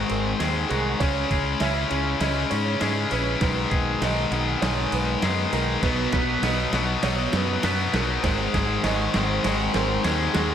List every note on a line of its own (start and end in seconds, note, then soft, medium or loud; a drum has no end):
0.00 0.10 G#2 medium
0.00 0.39 G#2 medium
0.00 0.39 D#3 medium
0.00 0.41 G#3 loud
0.00 0.69 F#4 medium
0.00 0.39 G#4 medium
0.00 0.10 C5 medium
0.00 0.98 C5 medium
0.00 0.97 F#5 medium
0.00 3.37 G#5 medium
0.00 0.97 D#6 medium
0.10 0.33 G#1 medium
0.10 1.00 C4 medium
0.10 0.70 A#4 medium
0.10 ride medium
0.39 0.63 D#2 medium
0.39 0.69 G#2 medium
0.39 0.70 D#3 medium
0.39 0.71 G#3 medium
0.39 1.31 G#4 medium
0.39 snare medium
0.39 ride medium
0.69 0.93 C2 medium
0.69 0.99 G#2 medium
0.69 0.99 D#3 medium
0.69 1.01 G#3 medium
0.69 1.00 F#4 medium
0.69 1.00 G#4 medium
0.69 ride medium
1.00 1.23 C#2 medium
1.00 2.51 C#3 medium
1.00 1.60 C#3 medium
1.00 1.61 G#3 medium
1.00 1.61 C#4 medium
1.00 3.39 E4 medium
1.00 1.60 C#5 medium
1.00 3.39 C#5 medium
1.00 kick loud
1.00 snare medium
1.00 ride medium
1.30 1.54 C#2 medium
1.30 2.81 G#4 medium
1.30 kick medium
1.30 ride medium
1.60 1.84 C#2 medium
1.60 1.89 C#3 medium
1.60 1.91 G#3 medium
1.60 1.90 C#4 medium
1.60 2.20 E4 medium
1.60 2.21 E5 medium
1.60 snare medium
1.60 ride medium
1.90 2.14 C#2 medium
1.90 2.19 C#3 medium
1.90 2.19 G#3 medium
1.90 2.50 C#4 medium
1.90 2.20 C#4 medium
1.90 ride medium
2.20 2.43 C#2 medium
2.20 2.79 C#3 medium
2.20 2.80 G#3 loud
2.20 2.81 C#4 loud
2.20 3.11 E4 medium
2.20 2.51 D#5 medium
2.20 snare medium
2.20 ride medium
2.50 2.74 G#2 medium
2.50 3.42 C#4 medium
2.50 3.11 C#5 medium
2.50 ride medium
2.80 3.04 G#2 medium
2.80 3.10 C#3 medium
2.80 3.11 G#3 medium
2.80 3.11 C#4 medium
2.80 3.42 G#4 medium
2.80 snare medium
2.80 ride medium
3.11 3.34 A#1 medium
3.11 3.40 C#3 medium
3.11 3.40 G#3 medium
3.11 3.40 C#4 medium
3.11 3.42 E4 medium
3.11 3.40 B4 medium
3.11 ride medium
3.41 3.64 B1 medium
3.41 4.01 G#2 medium
3.41 4.92 B2 medium
3.41 4.01 D#3 medium
3.41 4.02 G#3 medium
3.41 8.19 B3 medium
3.41 4.02 B4 medium
3.41 8.19 D#5 medium
3.41 5.81 G#5 medium
3.41 10.54 D#6 medium
3.41 kick loud
3.41 snare medium
3.41 ride medium
3.71 3.94 B1 medium
3.71 5.21 G#4 medium
3.71 kick medium
3.71 ride medium
4.01 4.24 B1 medium
4.01 4.31 G#2 medium
4.01 4.31 D#3 medium
4.01 4.32 G#3 medium
4.01 4.62 D#4 medium
4.01 4.62 D#5 medium
4.01 snare medium
4.01 ride medium
4.31 4.54 B1 medium
4.31 4.60 G#2 medium
4.31 4.61 D#3 medium
4.31 4.62 G#3 medium
4.31 4.91 B3 medium
4.31 ride medium
4.62 4.85 B1 medium
4.62 5.22 G#2 medium
4.62 5.22 D#3 medium
4.62 5.23 G#3 loud
4.62 5.52 D#4 medium
4.62 4.92 C#5 medium
4.62 snare medium
4.62 ride medium
4.92 5.15 B1 medium
4.92 5.82 B3 medium
4.92 5.53 B4 medium
4.92 ride medium
5.22 5.45 F#2 medium
5.22 5.52 G#2 medium
5.22 5.52 D#3 medium
5.22 5.53 G#3 medium
5.22 5.83 G#4 medium
5.22 snare medium
5.22 ride medium
5.52 5.75 B1 medium
5.52 5.81 G#2 medium
5.52 5.81 D#3 medium
5.52 5.82 G#3 medium
5.52 6.43 D#4 medium
5.52 5.83 A#4 medium
5.52 ride medium
5.82 6.05 B1 medium
5.82 7.33 B2 medium
5.82 6.42 B2 medium
5.82 6.43 F#3 medium
5.82 6.43 B3 medium
5.82 6.43 B4 medium
5.82 10.54 F#5 medium
5.82 kick loud
5.82 snare medium
5.82 crash medium
6.13 6.36 B1 medium
6.13 7.63 B4 medium
6.13 kick medium
6.13 snare medium
6.13 ride medium
6.42 6.65 B1 medium
6.42 6.72 B2 medium
6.42 6.73 F#3 medium
6.42 6.73 B3 medium
6.42 7.02 D#4 medium
6.42 7.03 D#5 medium
6.42 snare medium
6.42 ride loud
6.73 6.96 B1 medium
6.73 7.02 B2 medium
6.73 7.02 F#3 medium
6.73 7.33 B3 medium
6.73 7.03 B3 medium
6.73 snare medium
6.73 ride medium
7.03 7.26 B1 medium
7.03 7.62 B2 medium
7.03 7.63 F#3 loud
7.03 7.63 B3 loud
7.03 7.93 D#4 medium
7.03 7.33 C#5 medium
7.03 snare medium
7.03 ride loud
7.33 7.56 F#2 medium
7.33 8.24 B3 medium
7.33 7.94 B4 medium
7.33 snare medium
7.33 ride medium
7.63 7.86 F#2 medium
7.63 7.92 B2 medium
7.63 7.93 F#3 medium
7.63 7.93 B3 medium
7.63 8.24 B4 medium
7.63 snare medium
7.63 ride loud
7.93 8.16 B1 medium
7.93 8.22 B2 medium
7.93 8.22 F#3 medium
7.93 8.22 B3 medium
7.93 8.24 D#4 medium
7.93 8.23 A#4 medium
7.93 snare medium
7.93 ride medium
8.23 8.46 G#1 medium
8.23 8.83 G#2 medium
8.23 9.75 G#2 medium
8.23 8.84 D#3 medium
8.23 8.85 G#3 loud
8.23 10.54 C5 medium
8.23 8.84 C5 medium
8.23 10.54 G#5 medium
8.23 kick loud
8.23 snare medium
8.23 ride medium
8.54 8.77 G#1 medium
8.54 10.04 G#4 medium
8.54 kick medium
8.54 snare medium
8.54 ride medium
8.83 9.07 G#1 medium
8.83 9.14 G#2 medium
8.83 9.14 D#3 medium
8.83 9.16 G#3 medium
8.83 9.43 F#4 medium
8.83 9.44 D#5 medium
8.83 snare medium
8.83 ride medium
9.14 9.37 G#1 medium
9.14 9.43 G#2 medium
9.14 9.44 D#3 medium
9.14 9.45 G#3 medium
9.14 9.73 C4 medium
9.14 snare medium
9.14 ride medium
9.44 9.67 G#1 medium
9.44 10.04 G#2 medium
9.44 10.04 D#3 loud
9.44 10.06 G#3 loud
9.44 10.34 F#4 medium
9.44 9.74 C5 medium
9.44 snare medium
9.44 ride medium
9.73 9.97 G#1 medium
9.73 10.54 C4 medium
9.73 10.34 A#4 medium
9.73 snare medium
9.73 ride medium
10.04 10.27 D#2 medium
10.04 10.34 G#2 medium
10.04 10.34 D#3 medium
10.04 10.36 G#3 loud
10.04 10.54 G#4 medium
10.04 snare medium
10.04 ride medium
10.33 10.54 D#2 medium
10.33 10.54 G#2 medium
10.33 10.54 D#3 medium
10.33 10.54 G#3 loud
10.33 10.54 F#4 medium
10.33 10.54 G#4 medium
10.33 snare medium
10.33 ride medium